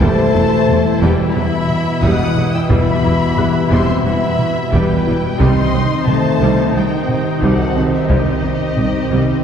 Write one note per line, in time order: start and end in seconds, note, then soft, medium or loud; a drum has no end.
0.00 0.09 E1 medium
0.00 0.09 E2 medium
0.00 5.37 B2 medium
0.00 5.36 E3 medium
0.00 0.21 E3 loud
0.00 5.37 E3 medium
0.00 0.32 G3 medium
0.00 1.02 A3 loud
0.00 5.36 E4 medium
0.00 1.00 C5 loud
0.00 0.64 D#5 soft
0.00 1.02 A5 loud
0.00 0.65 C7 medium
0.00 taiko loud
0.34 0.43 E1 medium
0.34 0.42 E2 medium
0.34 0.43 F#3 medium
0.34 0.55 E4 medium
0.68 0.76 E1 medium
0.68 0.76 E2 medium
0.68 0.88 G3 medium
0.68 0.77 G3 medium
0.68 taiko low-mid medium
1.01 1.10 E1 medium
1.01 1.10 E2 loud
1.01 1.22 E3 loud
1.01 1.33 G3 medium
1.01 1.36 G3 medium
1.01 1.36 B4 medium
1.01 1.35 G5 medium
1.34 1.44 E1 medium
1.34 1.44 E2 medium
1.34 1.44 F#3 medium
1.34 1.56 G3 medium
1.34 2.04 B3 medium
1.34 2.03 E5 loud
1.34 2.03 B5 loud
1.69 taiko low-mid soft
2.03 2.11 E1 loud
2.03 2.11 E2 medium
2.03 2.23 E3 medium
2.03 2.35 G3 medium
2.03 2.54 D#5 medium
2.03 2.54 F#5 loud
2.03 2.54 D#6 loud
2.03 taiko medium
2.36 2.45 E1 medium
2.36 2.45 E2 medium
2.36 2.44 F#3 medium
2.36 2.57 E4 medium
2.53 2.71 E4 medium
2.53 2.70 G5 medium
2.53 2.71 E6 medium
2.70 2.79 E1 medium
2.70 2.78 E2 loud
2.70 2.91 E3 loud
2.70 3.02 G3 medium
2.70 3.70 B3 loud
2.70 3.71 E5 loud
2.70 3.70 B5 loud
2.70 taiko loud
3.04 3.12 E1 medium
3.04 3.12 E2 medium
3.04 3.12 F#3 medium
3.04 3.25 E4 medium
3.37 3.46 E1 medium
3.37 3.46 E2 medium
3.37 3.45 G3 medium
3.37 3.58 G3 medium
3.37 5.36 G4 medium
3.37 5.36 F#6 medium
3.37 taiko low-mid medium
3.71 3.80 E1 medium
3.71 3.80 E2 loud
3.71 3.92 E3 loud
3.71 4.03 G3 medium
3.71 4.06 C4 medium
3.71 4.04 E5 medium
3.71 4.05 C6 loud
4.05 4.13 E1 medium
4.05 4.14 E2 medium
4.05 4.26 G3 medium
4.05 4.57 B3 medium
4.05 4.13 F#4 medium
4.05 4.72 E5 medium
4.05 4.71 B5 loud
4.39 taiko low-mid medium
4.72 4.81 E1 medium
4.72 4.81 E2 medium
4.72 4.93 E3 medium
4.72 5.04 G3 medium
4.72 5.39 G3 medium
4.72 5.41 B4 medium
4.72 5.39 G5 loud
4.72 taiko medium
5.06 5.15 E1 medium
5.06 5.15 E2 medium
5.06 5.14 G3 medium
5.06 5.27 E4 medium
5.39 5.48 C2 medium
5.39 9.44 C3 medium
5.39 5.61 C3 loud
5.39 9.44 D#3 medium
5.39 5.71 G3 loud
5.39 9.44 C4 medium
5.39 6.07 C4 loud
5.39 9.44 D#4 medium
5.39 9.44 C5 medium
5.39 6.06 D#5 medium
5.39 6.08 C6 loud
5.39 taiko medium
5.74 5.82 C2 medium
5.74 5.82 F#3 medium
5.74 5.94 C4 medium
6.07 6.15 C2 medium
6.07 6.16 C2 medium
6.07 6.28 D#3 medium
6.07 6.15 G3 medium
6.07 6.75 A3 medium
6.07 6.74 C5 medium
6.07 6.75 A5 loud
6.07 taiko low-mid medium
6.41 6.49 C2 medium
6.41 6.61 C3 loud
6.41 6.73 G3 medium
6.75 6.83 C2 medium
6.75 7.42 D#3 medium
6.75 6.95 D#3 medium
6.75 6.83 F#3 medium
6.75 7.41 C5 medium
6.75 7.43 G5 medium
7.08 taiko low-mid medium
7.42 7.51 C2 medium
7.42 7.63 C3 loud
7.42 7.74 G3 medium
7.42 7.93 F#4 medium
7.42 7.93 A4 medium
7.42 7.92 F#5 loud
7.42 taiko medium
7.76 7.85 C2 medium
7.76 7.84 F#3 medium
7.76 7.97 C4 medium
7.93 8.10 E3 medium
7.93 8.09 G4 medium
7.93 8.10 E5 medium
8.10 8.18 C2 medium
8.10 8.30 C3 loud
8.10 8.41 G3 medium
8.10 9.44 D#4 soft
8.10 9.44 G4 medium
8.10 9.44 D#5 loud
8.10 9.44 D#5 soft
8.10 taiko loud
8.10 swell medium
8.43 8.52 C2 medium
8.43 8.51 G3 medium
8.43 8.64 C4 medium
8.77 8.86 C2 medium
8.77 8.98 D#3 medium
8.77 8.85 G3 medium
8.77 taiko low-mid medium
9.10 9.19 C2 medium
9.10 9.32 C3 medium
9.10 9.42 G3 medium
9.10 9.44 C5 soft